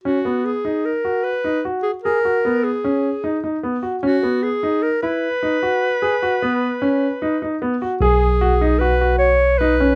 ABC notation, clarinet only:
X:1
M:5/4
L:1/8
Q:1/4=151
K:B
V:1 name="Clarinet"
F2 G2 A2 B2 z G | A3 G4 z3 | F2 G2 A B4- B- | B8 z2 |
G4 B2 c2 B2 |]